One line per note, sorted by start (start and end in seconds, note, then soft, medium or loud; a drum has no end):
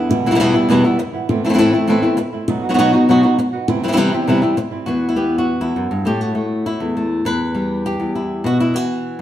0.00 0.26 E4 soft
0.09 0.24 E2 medium
0.09 0.24 B2 medium
0.09 0.24 E3 medium
0.09 0.24 G3 medium
0.09 0.24 B3 medium
0.09 0.24 E4 medium
0.09 muted nylon-string guitar stroke medium
0.26 0.30 B2 medium
0.26 0.30 E3 medium
0.26 0.30 G3 medium
0.26 0.30 B3 medium
0.26 0.31 E4 medium
0.31 0.34 B2 medium
0.31 0.34 E3 medium
0.31 0.35 G3 medium
0.31 0.35 B3 medium
0.31 0.35 E4 medium
0.35 0.39 B2 medium
0.35 0.39 E3 medium
0.35 0.39 G3 medium
0.35 0.40 B3 medium
0.35 0.39 E4 medium
0.35 muted nylon-string guitar stroke medium
0.40 0.54 E2 medium
0.40 0.54 B2 medium
0.40 0.54 E3 medium
0.40 0.54 G3 medium
0.40 0.54 B3 loud
0.40 0.53 E4 loud
0.54 0.69 E3 soft
0.54 0.69 G3 medium
0.54 0.69 B3 medium
0.54 0.69 E4 medium
0.69 0.83 E2 medium
0.69 0.84 B2 medium
0.69 0.84 E3 medium
0.69 0.84 G3 medium
0.69 0.84 B3 medium
0.69 0.83 E4 medium
0.84 0.98 E3 soft
0.84 0.98 G3 medium
0.84 0.98 B3 medium
0.84 0.99 E4 medium
0.99 muted nylon-string guitar stroke medium
1.13 1.28 E3 soft
1.13 1.29 G3 soft
1.13 1.28 B3 soft
1.13 1.28 E4 soft
1.29 1.43 A2 medium
1.29 1.43 E3 medium
1.29 1.44 A3 medium
1.29 1.43 C4 medium
1.29 1.42 E4 medium
1.29 muted nylon-string guitar stroke medium
1.44 1.48 E3 medium
1.44 1.49 A3 medium
1.44 1.49 C4 medium
1.44 1.49 E4 medium
1.49 1.52 E3 medium
1.49 1.53 A3 medium
1.49 1.53 C4 medium
1.49 1.54 E4 medium
1.54 1.57 E3 medium
1.54 1.57 A3 medium
1.54 1.58 C4 medium
1.54 1.58 E4 medium
1.58 1.73 A2 loud
1.58 1.73 E3 medium
1.58 1.73 A3 medium
1.58 1.73 C4 loud
1.58 1.72 E4 medium
1.58 muted nylon-string guitar stroke medium
1.73 1.87 A3 medium
1.73 1.88 C4 medium
1.73 1.88 E4 medium
1.87 2.02 A2 medium
1.87 2.03 E3 medium
1.87 2.03 A3 medium
1.87 2.02 C4 medium
1.87 2.01 E4 medium
2.02 2.16 A3 medium
2.02 2.17 C4 medium
2.02 2.17 E4 medium
2.17 muted nylon-string guitar stroke medium
2.33 2.48 A3 soft
2.33 2.48 C4 soft
2.33 2.48 E4 medium
2.48 2.62 B2 medium
2.48 2.63 F#3 medium
2.48 2.63 B3 medium
2.48 2.63 D#4 medium
2.48 2.61 F#4 medium
2.48 muted nylon-string guitar stroke medium
2.63 2.77 B3 soft
2.63 2.78 D#4 soft
2.63 2.77 F#4 soft
2.69 2.73 F#3 medium
2.69 2.73 B3 medium
2.69 2.73 D#4 medium
2.69 2.74 F#4 medium
2.74 2.77 F#3 medium
2.74 2.78 B3 medium
2.74 2.78 D#4 medium
2.74 2.78 F#4 medium
2.79 2.93 B2 medium
2.79 2.93 F#3 medium
2.79 2.93 B3 loud
2.79 2.93 D#4 loud
2.79 2.92 F#4 medium
2.93 3.08 B3 medium
2.93 3.08 D#4 soft
2.93 3.07 F#4 medium
3.08 3.23 B2 medium
3.08 3.23 F#3 medium
3.08 3.23 B3 medium
3.08 3.23 D#4 medium
3.08 3.22 F#4 medium
3.08 muted nylon-string guitar stroke medium
3.23 3.38 B3 soft
3.23 3.38 D#4 medium
3.23 3.37 F#4 medium
3.38 muted nylon-string guitar stroke medium
3.53 3.68 B3 soft
3.53 3.68 D#4 soft
3.53 3.67 F#4 medium
3.68 3.82 C3 medium
3.68 3.82 E3 medium
3.68 3.82 G3 medium
3.68 3.83 C4 medium
3.68 3.82 E4 medium
3.68 muted nylon-string guitar stroke medium
3.83 3.87 E3 medium
3.83 3.87 G3 medium
3.83 3.88 C4 medium
3.83 3.88 E4 medium
3.88 3.91 E3 medium
3.88 3.92 G3 medium
3.88 3.92 C4 medium
3.88 3.92 E4 medium
3.92 3.96 E3 medium
3.92 3.96 G3 medium
3.92 3.97 C4 medium
3.92 3.97 E4 medium
3.97 4.12 C3 loud
3.97 4.12 E3 loud
3.97 4.12 G3 loud
3.97 4.12 C4 loud
3.97 4.12 E4 loud
4.13 4.28 G3 soft
4.13 4.28 C4 medium
4.13 4.27 E4 medium
4.27 4.42 C3 medium
4.27 4.42 E3 medium
4.27 4.43 G3 medium
4.27 4.42 C4 medium
4.27 4.41 E4 medium
4.27 muted nylon-string guitar stroke medium
4.42 4.56 G3 soft
4.42 4.57 C4 medium
4.42 4.56 E4 medium
4.57 muted nylon-string guitar stroke medium
4.71 4.87 G3 soft
4.71 4.86 C4 soft
4.71 4.86 E4 soft
4.86 5.60 E2 medium
4.86 5.15 B3 soft
4.86 5.09 E4 soft
4.86 5.16 F#4 medium
5.09 5.46 E4 medium
5.16 6.04 B3 medium
5.16 5.38 G4 medium
5.38 5.91 F#4 medium
5.61 5.76 E2 medium
5.61 6.05 E4 medium
5.76 5.91 F#2 medium
5.91 6.06 G2 medium
6.05 6.80 A2 medium
6.05 6.34 A3 soft
6.05 6.66 E4 medium
6.05 6.21 G4 medium
6.21 6.95 F#4 medium
6.35 6.95 A3 medium
6.66 7.25 E4 medium
6.80 7.24 E2 medium
6.97 7.24 A3 soft
7.25 7.98 E2 medium
7.25 8.15 B4 loud
7.55 8.42 G3 medium
7.86 8.45 G4 loud
8.00 8.44 E2 medium
8.15 8.46 E4 medium
8.44 8.74 B2 medium
8.44 8.60 F#4 loud
8.60 8.76 E4 medium
8.74 9.22 E3 medium
8.74 9.22 F#4 medium